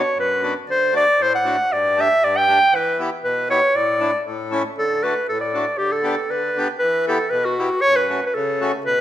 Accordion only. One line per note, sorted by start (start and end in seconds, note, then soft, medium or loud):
0.15 0.54 F#2 medium
0.43 0.54 B3 soft
0.43 0.54 D4 soft
0.43 0.54 F#4 medium
0.67 1.06 D3 soft
0.93 1.05 A3 medium
0.93 1.05 D4 soft
0.93 1.05 F#4 medium
1.18 1.57 A2 medium
1.45 1.57 A3 soft
1.45 1.56 D4 soft
1.45 1.57 F#4 medium
1.70 2.08 G2 soft
1.96 2.08 A3 medium
1.96 2.08 D4 medium
1.96 2.08 G4 medium
2.21 2.59 G2 medium
2.48 2.59 A3 medium
2.48 2.59 D4 soft
2.48 2.59 G4 medium
2.72 3.10 E3 medium
2.99 3.09 B3 medium
2.99 3.10 E4 medium
2.99 3.10 G4 medium
3.24 3.61 B2 medium
3.50 3.60 B3 medium
3.50 3.60 E4 medium
3.50 3.61 G4 medium
3.74 4.12 A2 medium
4.00 4.11 A3 medium
4.00 4.11 D4 soft
4.00 4.11 E4 medium
4.26 4.64 A2 medium
4.51 4.62 A3 medium
4.51 4.63 C#4 medium
4.51 4.63 E4 medium
4.78 5.16 D3 medium
5.03 5.14 A3 medium
5.03 5.14 D4 medium
5.03 5.14 F#4 medium
5.29 5.66 A2 medium
5.54 5.65 A3 medium
5.54 5.65 D4 medium
5.54 5.65 F#4 medium
5.78 6.17 D3 medium
6.03 6.15 B3 medium
6.03 6.15 D4 medium
6.03 6.15 G4 medium
6.29 6.68 D3 medium
6.58 6.68 B3 medium
6.58 6.68 D4 medium
6.58 6.68 G4 medium
6.81 7.19 E3 medium
7.08 7.18 B3 medium
7.08 7.18 E4 medium
7.08 7.18 G4 medium
7.31 7.69 B2 medium
7.59 7.69 B3 medium
7.59 7.69 E4 medium
7.59 7.70 G4 medium
7.84 8.22 F#2 medium
8.09 8.20 A3 soft
8.09 8.20 C#4 medium
8.09 8.21 F#4 medium
8.36 8.73 C#3 medium
8.61 8.72 A3 medium
8.61 8.72 C#4 soft
8.61 8.72 F#4 medium
8.86 9.01 B2 medium